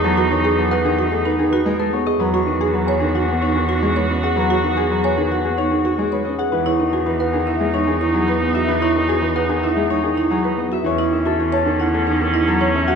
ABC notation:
X:1
M:4/4
L:1/16
Q:1/4=111
K:E
V:1 name="Harp"
[GABcdfa] B c G A f G d G B G B G A c d | B c d G B g G f G c G c G B d f | B c d G B g G f G c G c G B d f | B c d G B f G e G c G c G B d e |
B c d G B f G e G c G c G B d e | c d e A c a A f A d A d A c e f |]
V:2 name="Marimba"
z F z G z B z F z D z F z B z G | z F z G z c z F z D z F z c z G | z F z G z c z F z D z F z c z G | z E z F z B z E z D z E z B z F |
z E z F z B z E z D z E z B z F | z E z F z c z E z D z E z c z F |]
V:3 name="Oboe"
D12- D3 z | F16- | F12- F3 z | D16- |
D12- D3 z | C16 |]
V:4 name="Grand piano" clef=bass
F, z D, z F, z D, z A, z D, z G, z B, z | F, z D, z F, z D, z B, z D, z G, z C z | F, z D, z F, z D, z B, z D, z G, z C z | E, z D, z E, z D, z G, z D, z F, z B, z |
E, z D, z E, z D, z G, z D, z F, z B, z | E, z D, z E, z D, z A, z D, z F, z C z |]
V:5 name="Cello" clef=bass
E,,16 | E,,16- | E,,16 | E,,16- |
E,,16 | E,,16 |]